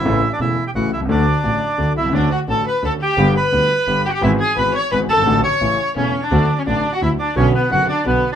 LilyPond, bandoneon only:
\new Staff \with { instrumentName = "Bandoneon" } { \time 3/4 \key d \major \tempo 4 = 172 << { e''8. d''16 e''8. g''16 fis''8 e''8 | d''2~ d''8 e''8 | d''8 fis''8 a''8 b''8 a''8 g''8~ | g''8 b''2 g''32 fis''32 g''16 |
e''8 gis''8 b''8 cis'''8 b''8 a''8~ | a''8 cis'''4. cis''8. d''16~ | d''8. cis''16 d''8. fis''16 e''8 d''8 | cis''8 b'8 fis''8 d''8 b'8. r16 | } \\ { e'8. d'16 e'8. g'16 fis'8 e'8 | d'2~ d'8 e'8 | d'8 fis'8 a'8 b'8 a'8 g'8~ | g'8 b'2 g'16 g'16 |
e'8 gis'8 b'8 cis''8 b'8 a'8~ | a'8 cis''4. cis'8. d'16~ | d'8. cis'16 d'8. fis'16 e'8 d'8 | cis'8 b8 fis'8 d'8 b8. d'16 | } >> }